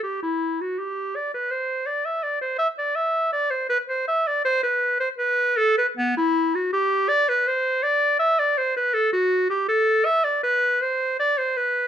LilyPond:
\new Staff \with { instrumentName = "Clarinet" } { \time 4/4 \key b \phrygian \tempo 4 = 81 g'16 e'8 fis'16 g'8 d''16 b'16 c''8 d''16 e''16 d''16 c''16 e''16 d''16 | e''8 d''16 c''16 b'16 c''16 e''16 d''16 c''16 b'8 c''16 b'8 a'16 b'16 | b16 e'8 fis'16 g'8 d''16 b'16 c''8 d''8 e''16 d''16 c''16 b'16 | a'16 fis'8 g'16 a'8 e''16 d''16 b'8 c''8 d''16 c''16 b'8 | }